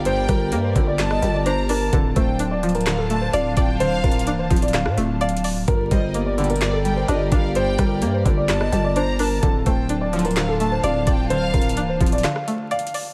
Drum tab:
HH |x-----------x-----------x-----------x-----------x-----------x-----------x-----------o-----------|x-----------x-----------x-----------x--x--x--x--x-----------x-----------x-----------x-----------|x-----------x---x---x---x-----------x--x--x--x--x-----------x-----------x---x---x---o-----------|x-----------x-----------x-----------x--x--x--x--x-----------x-----------x-----------x-----------|
CP |------------------------------------------------x-----------------------------------------------|------------------------------------------------x-----------------------------------------------|------------------------------------------------x-----------------------------------------------|------------------------------------------------x-----------------------------------------------|
SD |------------r-----------------------------------o-----r-----------------------------------------|------------------------------------------------o-----------------------------------------------|------------------------------------------------o-----r-----------------------------------------|------------------------------------------------o-----------------------------------------------|
BD |------------o-----------------------o-----------------------------------------------------------|o-----------o-----------------------------------------------------------------------o-----------|------------o-----------------------o-----------------------------------------------------------|o-----------o-----------------------------------------------------------------------o-----------|

HH |x-----------x-----------x-----------x-----------x-----------x-----------x-----------o-----------|x-----------x-----------x-----------x--x--x--x--x-----------x-----------x-----------x-----------|x-----------x---x---x---x-----------x--x--x--x--x-----------x-----------x---x---x---o-----------|
CP |------------------------------------------------x-----------------------------------------------|------------------------------------------------x-----------------------------------------------|------------------------------------------------x-----------------------------------------------|
SD |------------r-----------------------------------o-----r-----------------------------------------|------------------------------------------------o-----------------------------------------------|------------------------------------------------o-----r-----------------------------------------|
BD |------------o-----------------------o-----------------------------------------------------------|o-----------o-----------------------------------------------------------------------o-----------|------------o-----------------------o-----------------------------------------------------------|